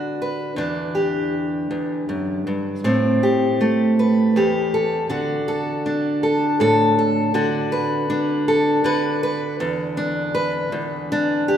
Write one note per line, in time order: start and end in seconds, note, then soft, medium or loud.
0.00 2.84 D3 medium
0.00 0.53 D4 medium
0.00 0.53 F#4 soft
0.00 0.20 B4 medium
0.22 0.54 B4 soft
0.56 1.69 E2 medium
0.56 2.80 D4 medium
0.95 2.79 G4 soft
1.71 2.08 E2 medium
2.09 2.46 F#2 medium
2.47 2.84 G2 medium
2.84 4.35 A2 medium
2.84 5.06 C4 medium
3.23 4.35 G4 medium
3.61 5.06 A3 medium
3.99 4.73 B4 medium
4.36 5.11 E2 medium
4.36 5.07 G4 medium
4.74 5.06 A4 medium
5.09 7.33 D3 medium
5.09 7.31 F#4 medium
5.48 6.22 A4 medium
5.86 8.09 D4 medium
6.23 6.60 A4 medium
6.60 7.31 A2 medium
6.60 6.97 A4 medium
6.99 7.31 A4 medium
7.34 8.83 D3 medium
7.34 9.55 F#4 medium
7.72 8.47 B4 medium
8.10 9.55 D4 medium
8.48 8.85 A4 medium
8.84 11.57 D3 medium
8.84 9.22 B4 medium
9.23 9.56 B4 medium
9.60 10.71 E2 medium
9.97 11.10 D4 medium
10.35 11.57 B4 medium
10.72 11.57 E2 medium
11.12 11.57 D4 medium
11.48 11.57 G4 medium